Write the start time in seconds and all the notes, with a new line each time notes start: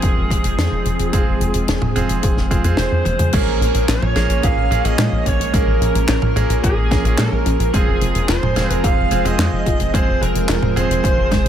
Already playing: F3 G#3 C4 F4 G#4
0.02 F1, kick, closed hi-hat
0.16 F1
0.30 F1, kick, closed hi-hat
0.44 F1, closed hi-hat
0.58 F2, snare, closed hi-hat
0.72 F1
0.85 F1, closed hi-hat
0.99 F1, closed hi-hat
1.13 F1 C4 F4 G#4, kick, closed hi-hat
1.27 F1
1.40 F1, closed hi-hat
1.54 F1, closed hi-hat
1.68 F1, snare, closed hi-hat
1.82 F1, mid tom
1.96 F1 C4 F4 G#4, closed hi-hat
2.09 F1, closed hi-hat
2.23 F1, kick, closed hi-hat
2.37 F1, snare
2.51 F1 C4 F4 G#4, kick, closed hi-hat
2.64 F2 C4 F4 G#4, closed hi-hat
2.77 F1 C5, snare, closed hi-hat
2.92 F2
3.05 F1, closed hi-hat, high tom
3.19 F2, closed hi-hat, mid tom
3.33 A#1 F3 G#3 A#3 C#4 G#4 A#4, kick, closed hi-hat, crash
3.47 A#1
3.61 A#1, closed hi-hat
3.74 A#1, closed hi-hat
3.88 A#1 C#4 C#5, snare, clap, closed hi-hat
4.02 A#1, mid tom
4.16 A#1 G#3 A#3 C#4 G#4, snare, closed hi-hat
4.29 A#1, closed hi-hat
4.43 A#1 F4 F5, kick, closed hi-hat
4.57 A#1
4.71 A#1 A#3 C#4 G#4, closed hi-hat
4.85 A#1 A#3 C#4 G#4 D#5, closed hi-hat
4.98 A#2 G#3, snare, clap, closed hi-hat
5.12 A#1
5.26 A#1 C#4 C#5, kick, closed hi-hat
5.40 A#1, closed hi-hat
5.53 A#1 G#3 A#3 C#4 G#4 A#4, kick, closed hi-hat
5.67 A#1
5.81 A#1, closed hi-hat
5.95 A#1, closed hi-hat
6.08 A#1 C#4 A#4, snare, clap, closed hi-hat
6.22 A#1, mid tom
6.36 A#1 G#3 A#3 C#4 G#4, closed hi-hat
6.49 A#1, closed hi-hat
6.64 A#1 F4 G#4, kick, closed hi-hat
6.77 A#1
6.91 A#1 A#3 C#4 G#4, kick, snare, closed hi-hat
7.05 A#1 A#3 C#4 G#4, closed hi-hat
7.18 A#2 G#3 A#4, snare, clap, closed hi-hat
7.32 A#1
7.46 A#1 C#4, closed hi-hat
7.60 A#1, closed hi-hat
7.74 F1 G#3 C4 F4 G#4, kick, closed hi-hat
7.87 F1
8.01 F1, closed hi-hat
8.15 F1, closed hi-hat
8.28 F1 F4 C5, snare, clap, closed hi-hat
8.42 F1, mid tom
8.56 F1 G#3 C4 F4 G#4, snare, closed hi-hat
8.70 F1 A#4, closed hi-hat
8.84 F1 G#4 F5, kick, closed hi-hat
8.97 F1
9.11 F1 C4 F4 G#4, closed hi-hat
9.25 F1 C4 F4 G#4 D#5, closed hi-hat
9.38 F2 G#3, snare, clap, closed hi-hat
9.52 F1
9.66 F1 F4, kick, closed hi-hat
9.80 F1, closed hi-hat
9.94 F1 G#3 C4 F4 G#4 C5, kick, closed hi-hat
10.08 F1
10.21 F1 A#4, closed hi-hat
10.35 F1, closed hi-hat
10.49 F1 F4, snare, clap, closed hi-hat
10.62 F1, mid tom
10.76 F1 G#3 C4 F4 G#4 C5, closed hi-hat
10.90 F1, closed hi-hat
11.04 F1 G#4, kick, closed hi-hat
11.17 F1
11.31 F1 G#3, kick, snare, closed hi-hat
11.45 F1